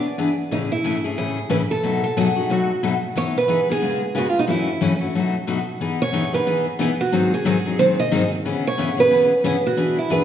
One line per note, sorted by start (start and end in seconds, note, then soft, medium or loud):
0.00 0.35 D5 medium
0.18 0.29 E3 medium
0.18 0.29 B3 medium
0.18 0.30 D4 medium
0.18 0.30 G#4 medium
0.51 0.71 A2 medium
0.51 0.72 C#3 medium
0.51 0.72 E3 medium
0.51 0.72 A3 medium
0.51 0.72 C#4 medium
0.51 0.57 D#4 medium
0.51 0.72 G#4 medium
0.72 1.04 E4 medium
0.84 0.95 A2 medium
0.84 0.95 C#3 medium
0.84 0.95 E3 medium
0.84 0.96 A3 medium
0.84 0.96 C#4 medium
0.84 0.96 G#4 medium
1.04 1.16 E3 soft
1.04 1.17 A3 soft
1.04 1.17 C#4 soft
1.04 1.17 G#4 medium
1.17 1.38 A2 medium
1.17 1.38 C#3 medium
1.17 1.38 E3 medium
1.17 1.38 A3 medium
1.17 1.38 C#4 medium
1.17 1.48 G#4 medium
1.17 1.38 G#4 medium
1.50 1.61 A2 medium
1.50 1.61 C#3 medium
1.50 1.61 E3 medium
1.50 1.61 A3 medium
1.50 1.61 C#4 medium
1.50 1.61 G#4 medium
1.50 1.56 B4 medium
1.71 2.01 A4 medium
1.83 2.04 B2 medium
1.83 2.04 F#3 medium
1.83 2.04 A3 medium
1.83 2.04 D#4 medium
1.83 2.04 F#4 medium
2.04 2.16 A4 medium
2.17 2.27 B2 medium
2.17 2.27 F#3 medium
2.17 2.28 A3 medium
2.17 2.28 D#4 medium
2.17 2.28 F#4 medium
2.17 2.51 G#4 medium
2.36 2.49 A3 soft
2.36 2.49 D#4 soft
2.36 2.49 F#4 medium
2.49 2.70 B2 medium
2.49 2.70 F#3 medium
2.49 2.70 A3 medium
2.49 2.70 D#4 medium
2.49 2.70 F#4 medium
2.49 2.81 F#4 medium
2.83 2.94 B2 medium
2.83 2.94 F#3 medium
2.83 2.94 A3 medium
2.83 2.94 D#4 medium
2.83 2.94 F#4 medium
3.16 3.36 E3 medium
3.16 3.36 B3 medium
3.16 3.36 D#4 medium
3.16 3.37 G#4 medium
3.16 3.23 C#5 medium
3.38 3.67 B4 medium
3.48 3.59 E3 medium
3.48 3.60 B3 medium
3.48 3.60 D#4 medium
3.48 3.60 G#4 medium
3.69 3.81 B3 soft
3.69 3.82 D#4 soft
3.69 3.82 G#4 medium
3.69 4.01 G#4 medium
3.82 4.02 C#3 medium
3.82 4.02 G#3 medium
3.82 4.02 B3 medium
3.82 4.02 F4 medium
3.82 4.03 G#4 medium
4.15 4.26 C#3 medium
4.15 4.26 G#3 medium
4.15 4.26 B3 medium
4.15 4.26 F4 medium
4.15 4.29 F#4 medium
4.15 4.26 G#4 medium
4.29 4.38 F4 medium
4.39 4.44 D#4 medium
4.47 4.68 F#2 medium
4.47 4.68 C#3 medium
4.47 4.68 E3 medium
4.47 4.68 A3 medium
4.47 4.68 C#4 medium
4.47 4.80 E4 medium
4.47 4.68 F#4 medium
4.81 4.92 F#2 medium
4.81 4.92 C#3 medium
4.81 4.92 E3 medium
4.81 4.92 A3 medium
4.81 4.92 C#4 medium
4.81 4.92 F#4 medium
5.01 5.14 E3 soft
5.01 5.14 A3 soft
5.01 5.14 C#4 medium
5.01 5.13 F#4 soft
5.15 5.35 B2 medium
5.15 5.35 F#3 medium
5.15 5.35 A3 medium
5.15 5.35 D#4 medium
5.15 5.35 F#4 medium
5.47 5.58 B2 medium
5.47 5.58 F#3 medium
5.47 5.58 A3 medium
5.47 5.58 D#4 medium
5.47 5.59 F#4 medium
5.81 6.01 E3 medium
5.81 6.01 B3 medium
5.81 6.01 D#4 medium
5.81 6.01 G#4 medium
6.02 6.34 C#5 medium
6.13 6.24 E3 medium
6.13 6.24 B3 medium
6.13 6.24 D#4 medium
6.13 6.24 G#4 loud
6.33 6.46 B3 soft
6.33 6.46 D#4 soft
6.33 6.46 G#4 medium
6.33 6.64 B4 medium
6.46 6.66 E3 medium
6.46 6.67 B3 medium
6.46 6.67 D#4 medium
6.46 6.67 G#4 medium
6.79 6.90 E3 medium
6.79 6.90 B3 loud
6.79 6.90 D#4 medium
6.79 6.90 G#4 medium
6.79 6.86 G#4 medium
7.01 7.34 F#4 medium
7.12 7.33 G#2 medium
7.12 7.33 D#3 medium
7.12 7.33 F#3 medium
7.12 7.33 C4 medium
7.12 7.33 D#4 medium
7.12 7.33 G#4 medium
7.34 7.45 G#4 medium
7.45 7.56 G#2 medium
7.45 7.56 D#3 medium
7.45 7.56 F#3 medium
7.45 7.56 C4 medium
7.45 7.56 D#4 medium
7.45 7.56 G#4 loud
7.45 7.76 G#4 medium
7.66 7.78 F#3 soft
7.66 7.78 C4 soft
7.66 7.79 D#4 medium
7.66 7.78 G#4 medium
7.79 7.99 G#2 medium
7.79 7.99 D#3 medium
7.79 7.99 F#3 medium
7.79 7.99 C4 medium
7.79 7.99 D#4 medium
7.79 7.99 G#4 medium
7.79 7.84 C5 medium
8.00 8.30 D#5 medium
8.11 8.22 G#2 medium
8.11 8.22 D#3 medium
8.11 8.22 F#3 medium
8.11 8.23 C4 loud
8.11 8.23 D#4 medium
8.11 8.23 G#4 loud
8.45 8.65 C#3 medium
8.45 8.65 E3 medium
8.45 8.65 B3 medium
8.45 8.65 C#4 medium
8.45 8.66 G#4 medium
8.67 8.97 C#5 loud
8.78 8.88 C#3 medium
8.78 8.89 E3 medium
8.78 8.89 B3 medium
8.78 8.89 C#4 medium
8.78 8.89 G#4 medium
8.97 9.10 B3 soft
8.97 9.10 C#4 medium
8.97 9.10 G#4 medium
8.97 9.42 B4 loud
9.11 9.31 C#3 medium
9.11 9.31 E3 medium
9.11 9.31 B3 medium
9.11 9.31 C#4 medium
9.11 9.31 G#4 medium
9.44 9.55 C#3 medium
9.44 9.55 E3 medium
9.44 9.55 B3 loud
9.44 9.55 C#4 loud
9.44 9.55 G#4 loud
9.44 9.51 G#4 medium
9.66 9.96 F#4 medium
9.77 9.97 E3 medium
9.77 9.97 B3 medium
9.77 9.97 D4 medium
9.77 9.97 G#4 medium
9.99 10.10 E4 medium
10.10 10.21 E3 medium
10.10 10.21 B3 medium
10.10 10.21 D4 medium
10.10 10.21 G#4 loud
10.10 10.24 B4 medium